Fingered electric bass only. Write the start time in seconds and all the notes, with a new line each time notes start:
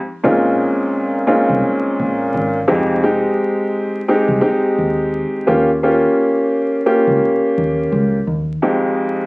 0.25 A#1
1.49 C2
1.99 A#1
2.34 G#1
2.69 F1
4.28 C2
4.78 D#2
5.48 D#2
7.07 C#2
7.58 D#2
7.92 C#2
8.27 D#2